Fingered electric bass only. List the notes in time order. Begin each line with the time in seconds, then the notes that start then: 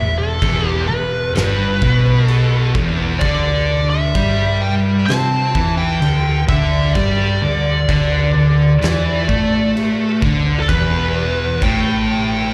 Already playing: E1
0.42 E1
0.90 E1
1.36 G1
1.82 B1
2.75 E1
3.22 D2
4.15 G2
5.10 C3
5.55 E2
6.02 D2
6.49 D2
6.95 G2
7.43 D2
7.89 D2
8.36 D2
8.82 E2
9.29 A2
10.23 D2
10.69 E1
11.62 A1